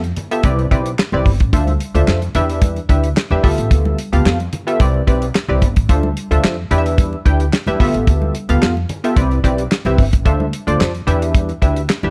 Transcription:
Already playing: F2
0.04 closed hi-hat, muted conga
0.16 closed hi-hat, low conga
0.31 B3 F4 G4 A4 E5, closed hi-hat
0.43 C2 C4 E4 G4 B4 D5, kick, closed hi-hat, high conga
0.59 closed hi-hat, muted conga
0.71 B1 C4 E4 G4 B4 D5, kick, closed hi-hat
0.86 closed hi-hat
0.99 snare, clap
1.12 C2 C4 E4 G4 B4 D5, high conga, low conga
1.26 G1, kick, open hi-hat, low conga
1.40 A1, kick, closed hi-hat
1.53 D2 D4 F4 A4 C5 E5, kick, closed hi-hat, muted conga
1.67 closed hi-hat, high conga
1.80 closed hi-hat
1.94 D2 D4 F4 A4 C5 E5, closed hi-hat
2.07 F2, snare, clap, muted conga
2.22 closed hi-hat, muted conga
2.35 E2 D4 E4 G4 B4 E5, closed hi-hat, low conga
2.50 closed hi-hat
2.62 kick, closed hi-hat, high conga
2.76 closed hi-hat, muted conga
2.89 D2 D4 E4 G4 B4 E5, kick, closed hi-hat
3.04 closed hi-hat
3.17 snare, clap, muted conga
3.31 E2 D4 E4 G4 B4 E5, high conga, low conga
3.43 D2 B3 F4 G4 A4 E5, kick, open hi-hat, low conga
3.58 A1, closed hi-hat
3.71 D2, kick, closed hi-hat, muted conga
3.85 muted conga, high conga
3.99 closed hi-hat
4.12 D2 B3 F4 G4 A4 F5, closed hi-hat
4.25 F2, snare, clap
4.40 closed hi-hat, muted conga
4.53 closed hi-hat, low conga
4.67 B3 F4 G4 A4 E5, closed hi-hat
4.80 C2 C4 E4 G4 B4 D5, kick, closed hi-hat, high conga
4.94 muted conga
5.07 B1 C4 E4 G4 B4 D5, kick, closed hi-hat
5.22 closed hi-hat
5.35 snare, clap, muted conga
5.48 C2 C4 E4 G4 B4 D5, high conga, low conga
5.62 G1, kick, closed hi-hat, low conga
5.76 A1, kick, closed hi-hat
5.89 D2 D4 F4 A4 C5 E5, kick, closed hi-hat, muted conga
6.03 muted conga, high conga
6.17 closed hi-hat
6.31 D2 D4 F4 A4 C5 E5, closed hi-hat
6.43 F2, snare, clap
6.71 E2 D4 E4 G4 B4 D5, closed hi-hat, low conga
6.78 E5
6.86 closed hi-hat
6.98 kick, closed hi-hat, muted conga, high conga
7.13 muted conga
7.25 D2 D4 E4 G4 B4 G5, kick, closed hi-hat
7.40 closed hi-hat
7.53 snare, clap, muted conga
7.67 E2 D4 E4 G4 B4 E5, closed hi-hat, high conga, low conga
7.80 D2 B3 F4 G4 A4 E5, kick, open hi-hat, low conga
7.94 A1, closed hi-hat
8.07 D2, kick, closed hi-hat
8.22 high conga
8.35 closed hi-hat
8.49 D2 B3 F4 G4 A4 F5, closed hi-hat
8.62 F2, snare, clap
8.77 muted conga
8.89 closed hi-hat, low conga
9.04 B3 F4 G4 A4 E5, closed hi-hat
9.16 C2 C4 E4 G4 B4 D5, kick, closed hi-hat, high conga
9.31 closed hi-hat, muted conga
9.44 B1 C4 E4 G4 B4 D5, kick, closed hi-hat
9.58 closed hi-hat
9.72 snare, clap
9.85 C2 C4 E4 G4 B4 E5, closed hi-hat, muted conga, high conga, low conga
9.98 G1, kick, open hi-hat, low conga
10.13 A1, kick, closed hi-hat
10.25 D2 D4 F4 A4 C5 E5, kick, closed hi-hat, muted conga
10.40 high conga
10.53 closed hi-hat
10.67 D2 D4 F4 A4 C5 D5, closed hi-hat
10.80 F2, snare, clap, muted conga
10.95 closed hi-hat
11.07 E2 D4 E4 G4 B4 E5, closed hi-hat, low conga
11.22 closed hi-hat
11.35 kick, closed hi-hat, high conga
11.49 closed hi-hat, muted conga
11.62 D2 D4 E4 G4 B4 E5, kick, closed hi-hat
11.76 closed hi-hat
11.90 snare, clap
12.03 E2 D4 E4 G4 B4 E5, muted conga, high conga, low conga

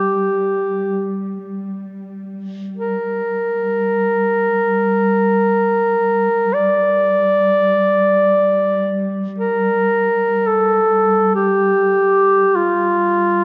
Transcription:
Already playing: G3 G4
1.44 G3
2.77 A#4
6.53 D5
9.38 A#4
10.47 A4
11.35 G4
12.56 F4

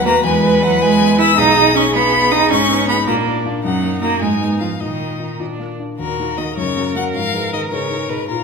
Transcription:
Already playing: D#2 B3 B4
0.05 A#3 F#4 B4 A#5
0.24 E2 G#3 G#5
0.43 B4
0.62 F#3 E4 F#5
0.81 G#3 B4 G#5
1.00 B3
1.19 E4 B4 E6
1.37 B1 D#4 G#4 D#6
1.57 G#4
1.75 C#4 D#4 C#6
1.94 B3 G#4 B5
2.14 B3
2.31 D#4 G#4 D#6
2.51 G#2 C#4 D#4 C#6
2.71 B3
2.89 B3 D#4 G#4 B5
3.07 A#2 A#3 D4 A#5
3.26 A#3
3.46 D4 F4
3.64 F#2 F#3 D#4 F#5
3.83 A#3
4.02 A#3 D#4 F#4 A#5
4.21 G#2 G#3 D#4 G#5
4.40 B3
4.60 F3 D#4 F4 F5
4.80 A#2 D#3 D#4 D#5
5.00 A#3
5.20 D#4 F4
5.40 A#2 D4
5.60 A#3
5.79 D4 F4
5.99 D#2 A#2 F#4 A#4
6.19 A#3 D#4 F#4
6.38 D#3 A#3 D#4 F#4 D#5
6.57 F#2 C#3 A#4 C#5
6.77 A#3 C#4 F#4
6.95 F#3 A#3 C#4 F#4 F#5
7.14 G#2 F3 F5
7.33 D#4 G#4 B4
7.52 D#3 D#4 G#4 B4 D#5
7.72 C#3 D#4 G#4 B4 C#5
7.90 D#4 G#4 B4
8.09 B2 D#4 G#4 B4
8.29 A#2 F4 A#4

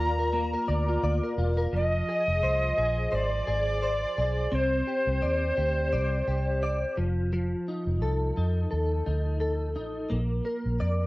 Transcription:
Already playing: F3 A#3 A#4 D5 A#5
0.00 D#2 F4
0.19 A#4
0.33 A#3
0.53 A#4
0.68 D2 D5
0.88 F4
1.03 D2 D5
1.23 A#4
1.38 E1 F4
1.57 A#4
1.73 F1 F3 D#5
2.09 G#4
2.28 F1
2.43 C2 C5
2.78 A#1 G#4
3.12 G#1 C5 D5
3.47 G#1 G#4
3.82 C5
4.18 B1 G#4
4.52 C2 C4 C5
4.87 G4
5.07 C2
5.22 D#2 D5
5.57 D2 G4
5.93 C2 D5
6.27 C2 G4
6.63 D5
6.97 F1 F3
7.33 F3
7.68 D#4
7.87 F1
8.02 C2 A4
8.37 F2 D#4
8.71 D#2 A4
9.06 D2 D#4
9.40 A4
9.76 A1 D#4
10.10 A#1 A#3
10.45 A#4
10.66 A#1
10.80 F2 D5

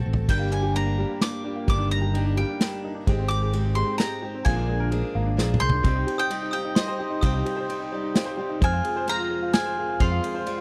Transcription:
Already playing: D3 A3 C4 F#4 A4
0.06 A1 C4
0.13 floor tom
0.28 G1 G2 D3 G3 A#3 D4 G4 A#4 G5, kick, crash
0.39 A#3
0.51 G3 A#3 D4 C5 G#5, ride
0.63 G4
0.73 G3 A#3 D4 G4 A#4 A#5, ride
0.86 A#3
0.97 G3 A#3 D4 G4 A#4
1.09 A#3
1.21 G3 A#3 D4 G4 A#4 D6, snare, ride
1.44 G3 A#3 D4 F4 G4
1.56 A#3
1.67 G1 G2 D#3 G3 A#3 D4 D#4 G4 A#4 D6, kick, ride
1.78 D4
1.91 G3 D4 D#4 A#4 A#5
2.01 G4
2.13 G3 A#3 D4 D#4 G4 A#4, ride
2.25 D4
2.37 G3 A#3 D4 D#4 G4 A#4 G5
2.49 D4
2.60 G3 A#3 D4 D#4 G4 A#4, snare, ride
2.84 G3 D4 D#4 A#4
2.95 D4
3.07 G#1 G#2 G#3 C4 D#4 G4 C5, kick, ride
3.19 C4
3.29 G#3 D#4 G4 A#4 D6, ride
3.42 G#4
3.53 G#3 C4 D#4 G4 C5, ride
3.65 C4
3.75 G#3 C4 D#4 G4 C5 C6
3.87 C4
3.98 G#3 C4 D#4 G4 C5 A#5, snare, ride
4.02 G4
4.22 G#3 C4 D#4 G4 C5
4.34 C4
4.45 A#1 A#2 D3 F3 G#3 A#3 D4 F4 G#4 A#4 G#5, kick, ride
4.56 D4
4.67 G#3 D4 F4 G#4 A#4
4.80 A#4
4.91 F3 G#3 A#3 D4 F4 G#4 A#4, ride
5.03 D4
5.15 G#1 G#3 A#3 D4 F4 A#4
5.26 D4
5.37 A#1 F3 G#3 A#3 D4 F4 G#4 A#4, snare
5.54 mid tom
5.60 C2 G#3 D4 F4 G#4 A#4 C6 G6
5.69 D4, floor tom
5.83 C2 C3 G3 C4 D#4 G4 C5 D#5, kick, ride
5.95 D#4
6.07 G3 C4 D#4 G4 C5 D#5, ride
6.18 C5 G5 D#6
6.29 G3 C4 D#4 G4 C5 D#5, ride
6.43 D#4
6.51 G3 C4 D#4 G4 C5 F5 G5 D#6
6.65 D#4
6.75 G3 C4 D#4 G4 C5 D#5 C6, snare, ride
6.88 C5
6.99 G3 C4 D#4 G4 C5 D#5
7.10 D#4
7.21 C2 C3 G3 C4 D#4 G4 C5 F5 G5 D#6, kick, ride
7.34 D#4
7.45 G3 C4 D#4 G4 C5 D#5, ride
7.57 C5
7.68 G3 C4 D#4 G4 C5 D#5, ride
7.80 D#4
7.92 G3 C4 D#4 G4 C5 D5
8.03 D#4
8.14 G3 C4 D#4 G4 C5 F5, snare, ride
8.26 C5
8.37 G3 C4 D#4 G4 C5 D5
8.49 D#4
8.60 F1 F2 F3 G#3 C4 F4 G#4 C5 G#5, kick, ride
8.65 F6
8.73 F4
8.84 F3 G#3 C4 G#4 C5, ride
8.96 C5
9.06 F3 G#3 C4 F4 G#4 C5 A#5 F6, ride
9.20 F4
9.30 F3 G#3 C4 G#4 C5
9.42 F4
9.53 F3 G#3 C4 F4 G#4 G#5 F6, snare, ride
9.65 C5
9.77 F3 G#3 C4 F4 G#4 A#4
9.88 F4
10.00 F1 F2 F3 G#3 C4 F4 G#4 C5 F5 C6, kick, ride
10.11 F4
10.22 F3 G#3 C4 G#4 C5, ride
10.35 C5
10.45 F3 G#3 C4 F4 G#4 D5, ride
10.58 F4

